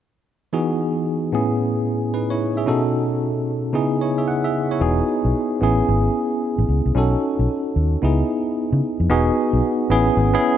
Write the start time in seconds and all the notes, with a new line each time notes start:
0.53 E3 B3 D#4 F#4 G#4
1.32 A2 B3 C#4 E4 G#4
2.14 D#4 B4
2.30 E4 C#5
2.57 G#4 E5
2.66 B2 C#4 D#4 F#4 A4
3.73 C#3 B3 D#4 E4 G#4
4.02 E4 C#5
4.18 G#4 E5
4.28 F#5
4.44 G#4 E5
4.71 E4 C#5
4.81 E1 B3 D#4 F#4 G#4
5.25 B1
5.61 A1 B3 C#4 E4 G#4
5.88 G#1
6.58 A1
6.69 C#2
6.86 C2
6.95 B1 C#4 D#4 F#4 A4
7.39 B1
7.76 D#2
8.02 C#2 B3 D#4 E4 G#4
8.73 C#3
9.00 F2
9.09 E1 B3 D#4 F#4 G#4
9.53 B1
9.90 A1 B3 C#4 E4 G#4
10.17 G#1
10.33 B3 C#4 E4 G#4